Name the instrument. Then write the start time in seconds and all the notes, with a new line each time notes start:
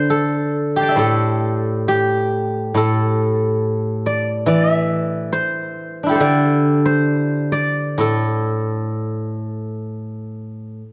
guzheng
Already playing: D3 C5 D5
0.10 A4
0.76 G4 C6
0.81 G5 A5
0.89 D5 E5
0.96 A2 A4 C5
1.88 G4
2.74 A2 A4
4.06 D5
4.46 E3 D5
4.73 E5
5.33 C5
6.03 D4 E4
6.09 G4 A4
6.15 C5
6.20 D3 D5
6.86 C5
7.52 D5
7.98 A2 A4